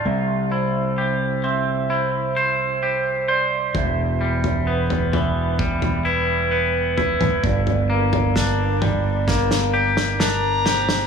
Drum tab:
SD |----------------|----------------|----o---oo-oo-oo|
T2 |----------------|---------------o|------o---------|
FT |----------------|o--o-oo-oo----oo|oo-o--o---------|
BD |----------------|o-------o-------|o---o---o-------|